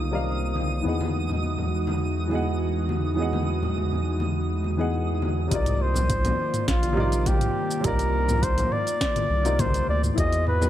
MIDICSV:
0, 0, Header, 1, 8, 480
1, 0, Start_track
1, 0, Tempo, 582524
1, 704, Time_signature, 4, 2, 24, 8
1, 8813, End_track
2, 0, Start_track
2, 0, Title_t, "Synth texture"
2, 0, Program_c, 0, 99
2, 0, Note_on_c, 0, 87, 75
2, 4554, Note_off_c, 0, 87, 0
2, 8813, End_track
3, 0, Start_track
3, 0, Title_t, "Flugelhorn"
3, 0, Program_c, 1, 56
3, 4556, Note_on_c, 1, 74, 91
3, 4794, Note_on_c, 1, 72, 98
3, 4807, Note_off_c, 1, 74, 0
3, 5509, Note_off_c, 1, 72, 0
3, 5513, Note_on_c, 1, 65, 95
3, 5992, Note_on_c, 1, 67, 92
3, 6004, Note_off_c, 1, 65, 0
3, 6468, Note_on_c, 1, 70, 100
3, 6481, Note_off_c, 1, 67, 0
3, 6950, Note_on_c, 1, 72, 105
3, 6963, Note_off_c, 1, 70, 0
3, 7189, Note_on_c, 1, 74, 104
3, 7202, Note_off_c, 1, 72, 0
3, 7912, Note_on_c, 1, 72, 104
3, 7924, Note_off_c, 1, 74, 0
3, 8148, Note_off_c, 1, 72, 0
3, 8153, Note_on_c, 1, 74, 103
3, 8259, Note_off_c, 1, 74, 0
3, 8394, Note_on_c, 1, 75, 112
3, 8613, Note_off_c, 1, 75, 0
3, 8634, Note_on_c, 1, 71, 103
3, 8813, Note_off_c, 1, 71, 0
3, 8813, End_track
4, 0, Start_track
4, 0, Title_t, "Grand piano"
4, 0, Program_c, 2, 0
4, 0, Control_c, 2, 64, 127
4, 0, Note_on_c, 2, 48, 73
4, 0, Note_on_c, 2, 55, 72
4, 0, Note_on_c, 2, 70, 65
4, 0, Note_on_c, 2, 72, 70
4, 0, Note_on_c, 2, 75, 66
4, 0, Note_on_c, 2, 77, 82
4, 86, Note_off_c, 2, 75, 0
4, 92, Note_off_c, 2, 48, 0
4, 92, Note_off_c, 2, 77, 0
4, 92, Note_on_c, 2, 48, 69
4, 98, Note_off_c, 2, 55, 0
4, 98, Note_on_c, 2, 55, 62
4, 104, Note_off_c, 2, 70, 0
4, 104, Note_on_c, 2, 70, 66
4, 110, Note_on_c, 2, 74, 65
4, 116, Note_on_c, 2, 75, 63
4, 124, Note_on_c, 2, 77, 71
4, 190, Note_off_c, 2, 48, 0
4, 192, Note_off_c, 2, 55, 0
4, 196, Note_off_c, 2, 70, 0
4, 198, Note_off_c, 2, 74, 0
4, 201, Note_off_c, 2, 75, 0
4, 205, Note_off_c, 2, 77, 0
4, 672, Note_on_c, 2, 52, 65
4, 688, Note_on_c, 2, 59, 61
4, 702, Note_on_c, 2, 68, 59
4, 715, Control_c, 2, 64, 0
4, 717, Note_on_c, 2, 75, 63
4, 723, Note_off_c, 2, 72, 0
4, 731, Note_on_c, 2, 78, 69
4, 839, Control_c, 2, 64, 127
4, 1860, Note_off_c, 2, 52, 0
4, 1868, Note_off_c, 2, 59, 0
4, 1875, Note_off_c, 2, 68, 0
4, 1876, Note_on_c, 2, 52, 75
4, 1882, Note_off_c, 2, 75, 0
4, 1889, Note_off_c, 2, 78, 0
4, 1891, Note_on_c, 2, 59, 68
4, 1905, Note_on_c, 2, 68, 73
4, 1922, Note_on_c, 2, 75, 70
4, 1937, Note_on_c, 2, 78, 84
4, 2582, Note_off_c, 2, 52, 0
4, 2589, Note_off_c, 2, 59, 0
4, 2596, Note_off_c, 2, 68, 0
4, 2596, Note_on_c, 2, 52, 75
4, 2605, Note_off_c, 2, 75, 0
4, 2611, Note_on_c, 2, 59, 72
4, 2613, Note_off_c, 2, 78, 0
4, 2625, Note_on_c, 2, 68, 73
4, 2641, Note_on_c, 2, 75, 72
4, 2655, Note_on_c, 2, 78, 85
4, 3903, Note_off_c, 2, 52, 0
4, 3911, Note_off_c, 2, 59, 0
4, 3918, Note_off_c, 2, 68, 0
4, 3926, Note_off_c, 2, 75, 0
4, 3932, Note_on_c, 2, 52, 70
4, 3933, Note_off_c, 2, 78, 0
4, 3939, Note_on_c, 2, 59, 64
4, 3947, Note_on_c, 2, 68, 70
4, 3955, Note_on_c, 2, 75, 65
4, 3962, Note_on_c, 2, 78, 79
4, 4029, Note_off_c, 2, 52, 0
4, 4033, Note_off_c, 2, 59, 0
4, 4037, Note_off_c, 2, 68, 0
4, 4041, Note_off_c, 2, 75, 0
4, 4044, Note_off_c, 2, 78, 0
4, 4513, Note_on_c, 2, 48, 69
4, 4526, Note_on_c, 2, 55, 72
4, 4537, Note_on_c, 2, 63, 71
4, 4548, Note_on_c, 2, 65, 68
4, 4553, Control_c, 2, 64, 0
4, 4561, Note_on_c, 2, 70, 67
4, 4573, Note_on_c, 2, 74, 86
4, 4691, Control_c, 2, 64, 127
4, 5697, Note_off_c, 2, 48, 0
4, 5707, Note_off_c, 2, 55, 0
4, 5709, Note_on_c, 2, 48, 91
4, 5712, Note_off_c, 2, 63, 0
4, 5718, Note_off_c, 2, 65, 0
4, 5721, Note_on_c, 2, 55, 84
4, 5724, Note_off_c, 2, 70, 0
4, 5731, Note_off_c, 2, 74, 0
4, 5733, Note_on_c, 2, 63, 81
4, 5745, Note_on_c, 2, 65, 81
4, 5757, Note_on_c, 2, 70, 80
4, 5767, Note_on_c, 2, 74, 101
4, 6418, Note_off_c, 2, 48, 0
4, 6424, Note_off_c, 2, 55, 0
4, 6430, Note_off_c, 2, 63, 0
4, 6432, Note_on_c, 2, 48, 88
4, 6436, Note_off_c, 2, 65, 0
4, 6442, Note_off_c, 2, 70, 0
4, 6444, Note_on_c, 2, 55, 84
4, 6447, Note_off_c, 2, 74, 0
4, 6457, Note_on_c, 2, 63, 83
4, 6467, Note_on_c, 2, 65, 80
4, 6481, Note_on_c, 2, 70, 80
4, 6492, Note_on_c, 2, 74, 103
4, 7741, Note_off_c, 2, 48, 0
4, 7747, Note_off_c, 2, 55, 0
4, 7754, Note_off_c, 2, 63, 0
4, 7759, Note_off_c, 2, 65, 0
4, 7766, Note_off_c, 2, 70, 0
4, 7770, Note_on_c, 2, 48, 80
4, 7772, Note_off_c, 2, 74, 0
4, 7776, Note_on_c, 2, 55, 77
4, 7783, Note_on_c, 2, 63, 79
4, 7789, Note_on_c, 2, 65, 74
4, 7793, Note_on_c, 2, 70, 73
4, 7801, Note_on_c, 2, 74, 89
4, 7868, Note_off_c, 2, 48, 0
4, 7872, Note_off_c, 2, 55, 0
4, 7875, Note_off_c, 2, 63, 0
4, 7878, Note_off_c, 2, 65, 0
4, 7880, Note_off_c, 2, 70, 0
4, 7884, Note_off_c, 2, 74, 0
4, 8352, Note_on_c, 2, 52, 76
4, 8369, Note_on_c, 2, 64, 69
4, 8384, Note_on_c, 2, 66, 69
4, 8397, Control_c, 2, 64, 0
4, 8399, Note_on_c, 2, 68, 70
4, 8413, Note_on_c, 2, 75, 84
4, 8560, Control_c, 2, 64, 127
4, 8813, Note_off_c, 2, 52, 0
4, 8813, Note_off_c, 2, 64, 0
4, 8813, Note_off_c, 2, 66, 0
4, 8813, Note_off_c, 2, 68, 0
4, 8813, Note_off_c, 2, 75, 0
4, 8813, End_track
5, 0, Start_track
5, 0, Title_t, "Analog synth pad"
5, 0, Program_c, 3, 89
5, 0, Note_on_c, 3, 51, 64
5, 0, Note_on_c, 3, 58, 62
5, 0, Note_on_c, 3, 63, 61
5, 0, Note_on_c, 3, 65, 81
5, 671, Note_off_c, 3, 65, 0
5, 672, Note_off_c, 3, 51, 0
5, 672, Note_off_c, 3, 58, 0
5, 710, Note_on_c, 3, 52, 75
5, 711, Note_on_c, 3, 56, 62
5, 712, Note_on_c, 3, 66, 78
5, 4511, Note_off_c, 3, 63, 0
5, 4514, Note_off_c, 3, 52, 0
5, 4514, Note_off_c, 3, 56, 0
5, 4515, Note_off_c, 3, 66, 0
5, 4544, Note_on_c, 3, 65, 79
5, 4545, Note_on_c, 3, 51, 77
5, 4545, Note_on_c, 3, 58, 66
5, 4545, Note_on_c, 3, 74, 74
5, 8351, Note_off_c, 3, 58, 0
5, 8351, Note_off_c, 3, 65, 0
5, 8351, Note_off_c, 3, 74, 0
5, 8352, Note_off_c, 3, 51, 0
5, 8387, Note_on_c, 3, 75, 72
5, 8388, Note_on_c, 3, 52, 78
5, 8388, Note_on_c, 3, 56, 72
5, 8388, Note_on_c, 3, 66, 86
5, 8813, Note_off_c, 3, 52, 0
5, 8813, Note_off_c, 3, 56, 0
5, 8813, Note_off_c, 3, 66, 0
5, 8813, Note_off_c, 3, 75, 0
5, 8813, End_track
6, 0, Start_track
6, 0, Title_t, "Analog synth bass"
6, 0, Program_c, 4, 38
6, 0, Note_on_c, 4, 36, 83
6, 681, Note_off_c, 4, 36, 0
6, 704, Note_on_c, 4, 40, 91
6, 4521, Note_off_c, 4, 40, 0
6, 4547, Note_on_c, 4, 36, 108
6, 5221, Note_off_c, 4, 36, 0
6, 5505, Note_on_c, 4, 34, 86
6, 6180, Note_off_c, 4, 34, 0
6, 6465, Note_on_c, 4, 36, 105
6, 7140, Note_off_c, 4, 36, 0
6, 7665, Note_on_c, 4, 36, 87
6, 8100, Note_off_c, 4, 36, 0
6, 8147, Note_on_c, 4, 38, 83
6, 8330, Note_off_c, 4, 38, 0
6, 8386, Note_on_c, 4, 40, 108
6, 8813, Note_off_c, 4, 40, 0
6, 8813, End_track
7, 0, Start_track
7, 0, Title_t, "Downlifter"
7, 0, Program_c, 5, 103
7, 0, Note_on_c, 5, 60, 56
7, 703, Note_off_c, 5, 60, 0
7, 8813, End_track
8, 0, Start_track
8, 0, Title_t, "Drums"
8, 457, Note_on_c, 9, 63, 80
8, 539, Note_off_c, 9, 63, 0
8, 830, Note_on_c, 9, 63, 92
8, 912, Note_off_c, 9, 63, 0
8, 1064, Note_on_c, 9, 64, 82
8, 1147, Note_off_c, 9, 64, 0
8, 1178, Note_on_c, 9, 63, 57
8, 1260, Note_off_c, 9, 63, 0
8, 1303, Note_on_c, 9, 64, 65
8, 1386, Note_off_c, 9, 64, 0
8, 1542, Note_on_c, 9, 63, 89
8, 1624, Note_off_c, 9, 63, 0
8, 1905, Note_on_c, 9, 63, 59
8, 1987, Note_off_c, 9, 63, 0
8, 2382, Note_on_c, 9, 63, 80
8, 2464, Note_off_c, 9, 63, 0
8, 2742, Note_on_c, 9, 63, 85
8, 2825, Note_off_c, 9, 63, 0
8, 2989, Note_on_c, 9, 64, 78
8, 3071, Note_off_c, 9, 64, 0
8, 3105, Note_on_c, 9, 63, 62
8, 3188, Note_off_c, 9, 63, 0
8, 3226, Note_on_c, 9, 64, 61
8, 3309, Note_off_c, 9, 64, 0
8, 3461, Note_on_c, 9, 63, 78
8, 3543, Note_off_c, 9, 63, 0
8, 3825, Note_on_c, 9, 63, 63
8, 3907, Note_off_c, 9, 63, 0
8, 4303, Note_on_c, 9, 63, 80
8, 4385, Note_off_c, 9, 63, 0
8, 4544, Note_on_c, 9, 42, 73
8, 4545, Note_on_c, 9, 36, 108
8, 4548, Note_on_c, 9, 82, 57
8, 4626, Note_off_c, 9, 42, 0
8, 4628, Note_off_c, 9, 36, 0
8, 4631, Note_off_c, 9, 82, 0
8, 4666, Note_on_c, 9, 42, 47
8, 4666, Note_on_c, 9, 45, 78
8, 4671, Note_on_c, 9, 82, 33
8, 4748, Note_off_c, 9, 42, 0
8, 4748, Note_off_c, 9, 45, 0
8, 4753, Note_off_c, 9, 82, 0
8, 4897, Note_on_c, 9, 64, 90
8, 4911, Note_on_c, 9, 82, 68
8, 4980, Note_off_c, 9, 64, 0
8, 4993, Note_off_c, 9, 82, 0
8, 5023, Note_on_c, 9, 42, 68
8, 5023, Note_on_c, 9, 45, 75
8, 5024, Note_on_c, 9, 36, 106
8, 5028, Note_on_c, 9, 82, 54
8, 5105, Note_off_c, 9, 42, 0
8, 5105, Note_off_c, 9, 45, 0
8, 5107, Note_off_c, 9, 36, 0
8, 5110, Note_off_c, 9, 82, 0
8, 5147, Note_on_c, 9, 42, 41
8, 5148, Note_on_c, 9, 64, 87
8, 5152, Note_on_c, 9, 82, 31
8, 5229, Note_off_c, 9, 42, 0
8, 5230, Note_off_c, 9, 64, 0
8, 5234, Note_off_c, 9, 82, 0
8, 5387, Note_on_c, 9, 42, 30
8, 5387, Note_on_c, 9, 45, 81
8, 5391, Note_on_c, 9, 82, 65
8, 5469, Note_off_c, 9, 42, 0
8, 5469, Note_off_c, 9, 45, 0
8, 5474, Note_off_c, 9, 82, 0
8, 5504, Note_on_c, 9, 36, 97
8, 5504, Note_on_c, 9, 38, 84
8, 5504, Note_on_c, 9, 42, 66
8, 5509, Note_on_c, 9, 82, 57
8, 5586, Note_off_c, 9, 36, 0
8, 5587, Note_off_c, 9, 38, 0
8, 5587, Note_off_c, 9, 42, 0
8, 5591, Note_off_c, 9, 82, 0
8, 5625, Note_on_c, 9, 63, 81
8, 5628, Note_on_c, 9, 42, 42
8, 5633, Note_on_c, 9, 82, 33
8, 5707, Note_off_c, 9, 63, 0
8, 5710, Note_off_c, 9, 42, 0
8, 5715, Note_off_c, 9, 82, 0
8, 5745, Note_on_c, 9, 45, 81
8, 5827, Note_off_c, 9, 45, 0
8, 5868, Note_on_c, 9, 42, 31
8, 5873, Note_on_c, 9, 82, 66
8, 5950, Note_off_c, 9, 42, 0
8, 5955, Note_off_c, 9, 82, 0
8, 5984, Note_on_c, 9, 36, 107
8, 5984, Note_on_c, 9, 42, 73
8, 5984, Note_on_c, 9, 63, 89
8, 5989, Note_on_c, 9, 82, 59
8, 6066, Note_off_c, 9, 36, 0
8, 6066, Note_off_c, 9, 63, 0
8, 6067, Note_off_c, 9, 42, 0
8, 6071, Note_off_c, 9, 82, 0
8, 6107, Note_on_c, 9, 42, 45
8, 6107, Note_on_c, 9, 45, 78
8, 6111, Note_on_c, 9, 82, 32
8, 6189, Note_off_c, 9, 42, 0
8, 6189, Note_off_c, 9, 45, 0
8, 6194, Note_off_c, 9, 82, 0
8, 6352, Note_on_c, 9, 82, 69
8, 6434, Note_off_c, 9, 82, 0
8, 6461, Note_on_c, 9, 42, 73
8, 6461, Note_on_c, 9, 45, 82
8, 6464, Note_on_c, 9, 36, 108
8, 6466, Note_on_c, 9, 82, 60
8, 6544, Note_off_c, 9, 42, 0
8, 6544, Note_off_c, 9, 45, 0
8, 6547, Note_off_c, 9, 36, 0
8, 6548, Note_off_c, 9, 82, 0
8, 6585, Note_on_c, 9, 42, 47
8, 6589, Note_on_c, 9, 82, 33
8, 6667, Note_off_c, 9, 42, 0
8, 6671, Note_off_c, 9, 82, 0
8, 6826, Note_on_c, 9, 45, 75
8, 6827, Note_on_c, 9, 64, 86
8, 6830, Note_on_c, 9, 82, 69
8, 6908, Note_off_c, 9, 45, 0
8, 6909, Note_off_c, 9, 64, 0
8, 6913, Note_off_c, 9, 82, 0
8, 6945, Note_on_c, 9, 36, 118
8, 6945, Note_on_c, 9, 42, 67
8, 6949, Note_on_c, 9, 82, 58
8, 7027, Note_off_c, 9, 36, 0
8, 7027, Note_off_c, 9, 42, 0
8, 7032, Note_off_c, 9, 82, 0
8, 7068, Note_on_c, 9, 42, 42
8, 7069, Note_on_c, 9, 64, 84
8, 7072, Note_on_c, 9, 82, 32
8, 7150, Note_off_c, 9, 42, 0
8, 7152, Note_off_c, 9, 64, 0
8, 7155, Note_off_c, 9, 82, 0
8, 7185, Note_on_c, 9, 45, 77
8, 7267, Note_off_c, 9, 45, 0
8, 7308, Note_on_c, 9, 42, 29
8, 7313, Note_on_c, 9, 82, 70
8, 7391, Note_off_c, 9, 42, 0
8, 7395, Note_off_c, 9, 82, 0
8, 7424, Note_on_c, 9, 38, 87
8, 7424, Note_on_c, 9, 42, 70
8, 7425, Note_on_c, 9, 36, 97
8, 7429, Note_on_c, 9, 82, 57
8, 7507, Note_off_c, 9, 36, 0
8, 7507, Note_off_c, 9, 38, 0
8, 7507, Note_off_c, 9, 42, 0
8, 7511, Note_off_c, 9, 82, 0
8, 7548, Note_on_c, 9, 42, 45
8, 7548, Note_on_c, 9, 45, 76
8, 7548, Note_on_c, 9, 63, 83
8, 7552, Note_on_c, 9, 82, 32
8, 7630, Note_off_c, 9, 42, 0
8, 7630, Note_off_c, 9, 45, 0
8, 7631, Note_off_c, 9, 63, 0
8, 7635, Note_off_c, 9, 82, 0
8, 7787, Note_on_c, 9, 42, 30
8, 7792, Note_on_c, 9, 82, 70
8, 7870, Note_off_c, 9, 42, 0
8, 7874, Note_off_c, 9, 82, 0
8, 7904, Note_on_c, 9, 42, 67
8, 7904, Note_on_c, 9, 45, 79
8, 7904, Note_on_c, 9, 63, 94
8, 7905, Note_on_c, 9, 36, 109
8, 7908, Note_on_c, 9, 82, 61
8, 7986, Note_off_c, 9, 42, 0
8, 7986, Note_off_c, 9, 45, 0
8, 7986, Note_off_c, 9, 63, 0
8, 7988, Note_off_c, 9, 36, 0
8, 7991, Note_off_c, 9, 82, 0
8, 8028, Note_on_c, 9, 42, 46
8, 8032, Note_on_c, 9, 82, 35
8, 8110, Note_off_c, 9, 42, 0
8, 8115, Note_off_c, 9, 82, 0
8, 8267, Note_on_c, 9, 45, 78
8, 8271, Note_on_c, 9, 82, 70
8, 8349, Note_off_c, 9, 45, 0
8, 8354, Note_off_c, 9, 82, 0
8, 8385, Note_on_c, 9, 36, 120
8, 8386, Note_on_c, 9, 42, 65
8, 8391, Note_on_c, 9, 82, 59
8, 8468, Note_off_c, 9, 36, 0
8, 8469, Note_off_c, 9, 42, 0
8, 8473, Note_off_c, 9, 82, 0
8, 8508, Note_on_c, 9, 42, 41
8, 8512, Note_on_c, 9, 82, 37
8, 8590, Note_off_c, 9, 42, 0
8, 8595, Note_off_c, 9, 82, 0
8, 8625, Note_on_c, 9, 45, 74
8, 8707, Note_off_c, 9, 45, 0
8, 8747, Note_on_c, 9, 64, 102
8, 8752, Note_on_c, 9, 82, 68
8, 8813, Note_off_c, 9, 64, 0
8, 8813, Note_off_c, 9, 82, 0
8, 8813, End_track
0, 0, End_of_file